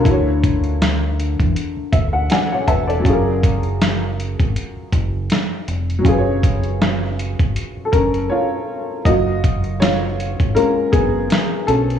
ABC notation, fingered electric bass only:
X:1
M:4/4
L:1/16
Q:"Swing 16ths" 1/4=80
K:F#
V:1 name="Fingered electric bass" clef=bass
=D,,6- D,, =E,, z2 D,,2 z2 =E,,,2 | F,,,6- F,,, G,,, z2 F,,,2 z2 E,,,2 | F,,,6- F,,, G,,, z2 F,,,2 z4 | F,,,6- F,,, G,,, z2 F,,,2 z2 B,,,2 |]